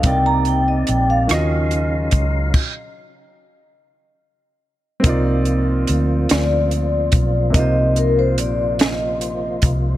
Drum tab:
CC |------|x-----|------|------|
HH |xxxxxx|------|xxxxxx|xxxxxx|
SD |---r--|------|---o--|---o--|
BD |o----o|o-----|o----o|o----o|